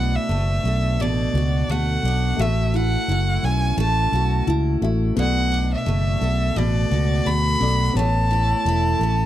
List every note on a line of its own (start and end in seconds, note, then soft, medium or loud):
0.00 0.16 B1 medium
0.00 0.99 B2 medium
0.00 0.29 A3 medium
0.00 2.33 B3 medium
0.00 2.03 D4 medium
0.00 2.34 A4 soft
0.00 0.32 B4 medium
0.00 2.35 D5 medium
0.00 0.17 F#5 medium
0.15 1.03 E5 medium
0.29 0.58 F#1 medium
0.29 1.69 A3 medium
0.64 0.98 B1 medium
0.64 3.43 A4 medium
0.98 1.27 A1 medium
0.98 2.46 B2 medium
0.98 1.72 D5 medium
1.34 1.62 C#2 medium
1.34 2.77 F#4 medium
1.68 1.97 D2 medium
1.68 2.39 A3 medium
1.68 2.42 F#5 medium
2.03 2.32 B1 medium
2.03 2.47 D4 medium
2.37 2.95 A1 loud
2.37 4.77 A3 medium
2.37 3.77 A3 medium
2.37 4.78 F#4 medium
2.37 4.79 E5 medium
2.37 2.76 E5 medium
2.74 3.08 E4 medium
2.74 3.46 F#5 medium
3.08 3.37 F#1 medium
3.08 4.46 E4 medium
3.43 3.72 B1 medium
3.43 5.25 C#4 medium
3.43 3.79 G#5 medium
3.77 4.06 A1 medium
3.77 5.86 A3 medium
3.77 4.44 A5 medium
4.12 4.41 B1 medium
4.12 6.91 F#4 medium
4.47 4.76 C#2 medium
4.47 4.81 E4 medium
4.82 5.10 A1 medium
4.82 5.17 A3 medium
4.82 5.25 E4 medium
4.82 5.17 F#4 medium
4.82 5.18 E5 medium
5.16 5.74 B1 loud
5.16 6.55 B2 medium
5.16 7.56 B3 medium
5.16 7.57 A4 medium
5.16 7.58 D5 medium
5.16 5.69 F#5 medium
5.52 7.60 D4 medium
5.74 6.60 E5 medium
5.86 6.15 F#1 medium
5.86 7.26 A3 medium
6.21 6.50 B1 medium
6.21 9.00 A4 medium
6.56 6.85 A1 medium
6.56 8.03 B2 medium
6.56 7.28 D5 medium
6.91 7.20 C#2 medium
6.91 8.03 F#4 medium
7.26 7.55 D2 medium
7.26 7.96 A3 medium
7.26 7.98 B5 loud
7.60 7.89 B1 medium
7.60 7.92 B3 soft
7.60 8.03 D4 medium
7.60 7.94 A4 soft
7.60 7.96 D5 medium
7.93 8.52 A1 loud
7.93 9.26 A3 medium
7.93 9.26 B3 medium
7.93 9.26 A4 medium
7.93 9.26 C#5 medium
7.93 9.26 A5 loud
8.31 8.65 E4 medium
8.65 8.94 E1 medium
8.65 9.26 E4 medium
8.99 9.26 A1 medium
8.99 9.26 C#4 medium